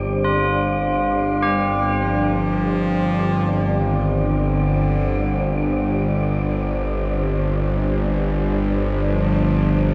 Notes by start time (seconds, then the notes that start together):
Already playing: G1 C4 D4 G4 C5 D5
0.24 F4
1.43 G3 G4
2.03 F3
3.81 D#3
4.36 D3
5.56 D3
9.09 F3